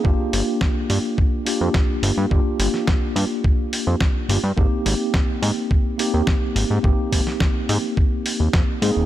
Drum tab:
HH |--o---o---o---o-|--o---o---o---o-|--o---o---o---o-|--o---o---o---o-|
SD |----o-------o---|---oo-------o---|----o-------o---|---oo-------o---|
BD |o---o---o---o---|o---o---o---o---|o---o---o---o---|o-o-o---o---o---|